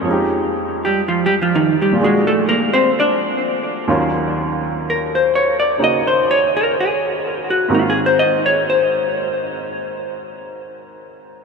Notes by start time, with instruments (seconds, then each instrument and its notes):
0.01 upright piano F2 F3
0.08 upright piano G#3 D#4
0.13 upright piano G4
0.85 hollow-body jazz guitar G3 G4
1.08 hollow-body jazz guitar F3 F4
1.26 hollow-body jazz guitar G3 G4
1.41 hollow-body jazz guitar F3 F4
1.55 hollow-body jazz guitar D#3 D#4
1.81 hollow-body jazz guitar G3 G4
1.92 upright piano A#2 F4
1.98 upright piano G#3 D4
2.03 hollow-body jazz guitar G#3 G#4, upright piano F#4
2.27 hollow-body jazz guitar A3 A4
2.49 hollow-body jazz guitar A#3 A#4
2.73 hollow-body jazz guitar C4 C5
3.00 hollow-body jazz guitar D4 D5
3.88 upright piano D#2 D#3 F#3 C#4 F4
4.90 hollow-body jazz guitar A#4
5.15 hollow-body jazz guitar C5
5.35 hollow-body jazz guitar C#5
5.60 hollow-body jazz guitar D5
5.78 upright piano C#3 A#3 D#4 F#4
5.84 hollow-body jazz guitar D#5
6.07 hollow-body jazz guitar C5
6.31 hollow-body jazz guitar C#5
6.57 hollow-body jazz guitar A#4
6.80 hollow-body jazz guitar G#4
7.50 hollow-body jazz guitar F#4
7.68 upright piano G#2 D#3 A#3 C4 F#4
7.75 hollow-body jazz guitar F4
7.90 hollow-body jazz guitar G#4
8.06 hollow-body jazz guitar C5
8.19 hollow-body jazz guitar D#5
8.46 hollow-body jazz guitar C#5
8.70 hollow-body jazz guitar C5